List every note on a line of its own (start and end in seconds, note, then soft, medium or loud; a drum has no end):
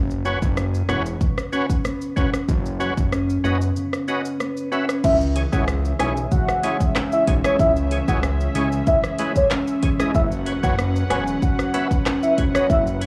0.00 0.35 F#1 loud
0.00 2.48 F#2 medium
0.00 0.57 C#4 medium
0.10 shaker soft
0.25 2.79 F#3 medium
0.25 0.39 C#4 medium
0.25 0.39 F#4 medium
0.25 0.39 B4 medium
0.25 0.39 C#5 loud
0.25 shaker soft
0.42 0.83 F#1 loud
0.42 kick medium
0.42 shaker medium
0.57 1.53 C#4 medium
0.57 cross-stick medium
0.57 shaker medium
0.74 shaker soft
0.89 1.16 E1 loud
0.89 1.84 B3 medium
0.89 1.03 C#4 medium
0.89 1.03 F#4 medium
0.89 1.03 B4 medium
0.89 1.03 C#5 medium
0.89 cross-stick medium
0.89 shaker medium
1.06 shaker medium
1.21 3.75 C#3 medium
1.21 kick loud
1.21 shaker medium
1.38 cross-stick medium
1.38 shaker medium
1.53 1.66 C#4 medium
1.53 2.16 C#4 medium
1.53 1.66 F#4 medium
1.53 1.67 B4 medium
1.53 1.67 C#5 loud
1.53 shaker medium
1.70 kick medium
1.70 shaker medium
1.85 3.43 B3 medium
1.85 cross-stick medium
1.85 shaker medium
2.02 shaker medium
2.16 2.31 E1 medium
2.16 2.30 C#4 medium
2.16 3.12 C#4 medium
2.16 2.30 F#4 medium
2.16 2.30 B4 medium
2.16 2.30 C#5 medium
2.16 kick medium
2.16 shaker soft
2.34 cross-stick medium
2.34 shaker medium
2.49 2.91 F#1 loud
2.49 5.04 F#2 medium
2.49 kick loud
2.49 shaker medium
2.66 shaker soft
2.80 5.11 F#3 medium
2.80 2.94 C#4 medium
2.80 2.94 F#4 medium
2.80 2.94 B4 medium
2.80 2.94 C#5 medium
2.80 shaker soft
2.98 3.38 F#1 medium
2.98 kick medium
2.98 shaker medium
3.12 4.08 C#4 medium
3.12 cross-stick medium
3.12 shaker medium
3.30 shaker medium
3.44 3.72 F#1 medium
3.44 4.39 B3 medium
3.44 3.58 C#4 medium
3.44 3.58 F#4 medium
3.44 3.58 B4 medium
3.44 3.58 D#5 medium
3.44 shaker medium
3.61 shaker medium
3.76 5.03 C#3 medium
3.76 shaker medium
3.93 cross-stick medium
3.93 shaker medium
4.08 4.22 C#4 medium
4.08 4.72 C#4 medium
4.08 4.22 F#4 medium
4.08 4.22 B4 medium
4.08 4.22 D#5 loud
4.08 shaker medium
4.25 shaker medium
4.40 5.11 B3 medium
4.40 cross-stick medium
4.40 shaker medium
4.57 shaker medium
4.72 4.85 C#4 medium
4.72 5.99 C#4 medium
4.72 4.86 F#4 medium
4.72 4.86 B4 medium
4.72 4.86 E5 medium
4.72 shaker soft
4.89 cross-stick medium
4.89 shaker medium
5.04 5.46 C#2 loud
5.04 10.11 C#3 medium
5.04 7.58 C#3 medium
5.04 10.11 C#4 medium
5.04 10.11 G#4 medium
5.04 10.11 E5 medium
5.04 5.16 E5 loud
5.04 kick loud
5.04 crash loud
5.04 shaker medium
5.21 shaker soft
5.36 6.31 E3 medium
5.36 5.43 G#4 medium
5.36 5.43 C#5 medium
5.36 closed hi-hat medium
5.36 shaker medium
5.52 5.93 C#2 loud
5.52 5.65 G#3 medium
5.52 5.65 C#4 medium
5.52 5.65 E4 medium
5.52 5.65 G#4 medium
5.52 5.65 C#5 medium
5.52 5.64 F#5 medium
5.52 kick medium
5.52 shaker medium
5.68 6.63 G#3 medium
5.68 cross-stick loud
5.68 shaker medium
5.85 shaker medium
5.99 6.27 B1 loud
5.99 6.13 G#3 medium
5.99 6.13 C#4 medium
5.99 6.95 C#4 medium
5.99 6.13 E4 medium
5.99 6.13 G#4 medium
5.99 6.13 C#5 medium
5.99 6.12 G#5 medium
5.99 cross-stick medium
5.99 closed hi-hat medium
5.99 shaker medium
6.17 shaker medium
6.32 7.26 E3 medium
6.32 6.78 F#5 loud
6.32 kick loud
6.32 shaker medium
6.48 cross-stick medium
6.48 shaker medium
6.63 6.77 G#3 medium
6.63 8.22 G#3 medium
6.63 6.77 C#4 medium
6.63 6.77 E4 medium
6.63 6.77 G#4 medium
6.63 6.77 C#5 medium
6.63 closed hi-hat medium
6.63 shaker medium
6.80 kick medium
6.80 shaker medium
6.95 8.55 C#4 medium
6.95 cross-stick medium
6.95 clap medium
6.95 shaker medium
7.12 7.23 E5 medium
7.12 shaker medium
7.27 7.42 B1 loud
7.27 7.90 E3 medium
7.27 7.34 G#4 medium
7.27 7.35 C#5 medium
7.27 kick medium
7.27 closed hi-hat medium
7.27 shaker medium
7.44 7.57 G#3 medium
7.44 7.57 C#4 medium
7.44 7.57 E4 medium
7.44 7.57 G#4 medium
7.44 7.55 C#5 medium
7.44 7.57 C#5 medium
7.44 cross-stick medium
7.44 shaker medium
7.59 8.02 C#2 loud
7.59 10.15 C#3 medium
7.59 7.72 E5 loud
7.59 kick loud
7.59 shaker medium
7.76 shaker soft
7.91 8.86 E3 medium
7.91 7.98 G#4 medium
7.91 7.98 C#5 medium
7.91 closed hi-hat medium
7.91 shaker soft
8.08 8.49 C#2 loud
8.08 8.20 G#3 medium
8.08 8.20 C#4 medium
8.08 8.20 E4 medium
8.08 8.20 G#4 medium
8.08 8.20 C#5 medium
8.08 8.19 F#5 medium
8.08 kick loud
8.08 shaker medium
8.23 9.18 G#3 medium
8.23 cross-stick loud
8.23 shaker medium
8.40 shaker medium
8.55 8.83 C#2 loud
8.55 8.69 G#3 medium
8.55 8.69 C#4 medium
8.55 9.51 C#4 medium
8.55 8.69 E4 medium
8.55 8.69 G#4 medium
8.55 8.69 C#5 medium
8.55 8.67 G#5 medium
8.55 closed hi-hat medium
8.55 shaker medium
8.72 shaker medium
8.87 9.82 E3 medium
8.87 8.99 E5 medium
8.87 kick loud
8.87 shaker medium
9.04 cross-stick medium
9.04 shaker medium
9.18 9.33 G#3 medium
9.18 10.22 G#3 medium
9.18 9.33 C#4 medium
9.18 9.33 E4 medium
9.18 9.33 G#4 medium
9.18 9.33 B4 medium
9.18 closed hi-hat medium
9.18 shaker medium
9.36 9.47 C#5 medium
9.36 kick medium
9.36 shaker medium
9.50 10.82 C#4 medium
9.50 cross-stick medium
9.50 clap medium
9.50 shaker medium
9.68 shaker medium
9.83 10.22 E3 medium
9.83 9.90 G#4 medium
9.83 9.90 C#5 loud
9.83 kick medium
9.83 closed hi-hat medium
9.83 shaker soft
10.00 10.12 G#3 medium
10.00 10.12 C#4 medium
10.00 10.12 E4 medium
10.00 10.12 G#4 medium
10.00 10.12 D#5 medium
10.00 cross-stick medium
10.00 shaker medium
10.15 10.57 F#1 loud
10.15 12.69 F#2 medium
10.15 13.06 F#3 medium
10.15 13.06 C#4 medium
10.15 13.06 B4 medium
10.15 10.27 E5 loud
10.15 13.06 F#5 medium
10.15 kick loud
10.15 shaker medium
10.32 shaker soft
10.46 12.37 F#3 medium
10.46 10.53 B4 medium
10.46 10.53 C#5 medium
10.46 closed hi-hat medium
10.46 shaker medium
10.63 11.04 F#1 loud
10.63 10.75 B3 medium
10.63 10.75 C#4 medium
10.63 10.75 F#4 medium
10.63 10.76 B4 medium
10.63 10.76 C#5 medium
10.63 10.74 F#5 medium
10.63 kick medium
10.63 shaker medium
10.79 11.73 B3 medium
10.79 cross-stick loud
10.79 shaker medium
10.96 shaker medium
11.10 11.38 E1 loud
11.10 11.24 B3 medium
11.10 11.24 C#4 medium
11.10 12.06 C#4 medium
11.10 11.24 F#4 medium
11.10 11.24 B4 medium
11.10 11.24 C#5 medium
11.10 11.22 G#5 medium
11.10 cross-stick medium
11.10 closed hi-hat medium
11.10 shaker medium
11.27 shaker medium
11.42 13.06 C#3 medium
11.42 11.88 F#5 loud
11.42 kick loud
11.42 shaker medium
11.59 cross-stick medium
11.59 shaker medium
11.74 11.88 B3 medium
11.74 13.06 B3 medium
11.74 11.88 C#4 medium
11.74 11.88 F#4 medium
11.74 11.88 B4 medium
11.74 11.88 E5 medium
11.74 closed hi-hat medium
11.74 shaker medium
11.91 kick loud
11.91 shaker medium
12.06 13.06 C#4 medium
12.06 cross-stick medium
12.06 clap medium
12.06 shaker medium
12.23 12.34 E5 medium
12.23 shaker medium
12.38 12.53 E1 medium
12.38 13.01 F#3 medium
12.38 12.45 B4 medium
12.38 12.45 C#5 medium
12.38 kick medium
12.38 closed hi-hat medium
12.38 shaker soft
12.54 12.67 B3 medium
12.54 12.67 C#4 medium
12.54 12.67 F#4 medium
12.54 12.67 B4 medium
12.54 12.65 C#5 medium
12.54 12.67 D#5 medium
12.54 cross-stick loud
12.54 shaker medium
12.70 13.06 F#1 loud
12.70 13.06 F#2 medium
12.70 12.82 E5 loud
12.70 kick loud
12.70 shaker medium
12.87 shaker soft
13.01 13.06 F#3 medium
13.01 13.06 B4 medium
13.01 13.06 C#5 medium
13.01 closed hi-hat medium
13.01 shaker medium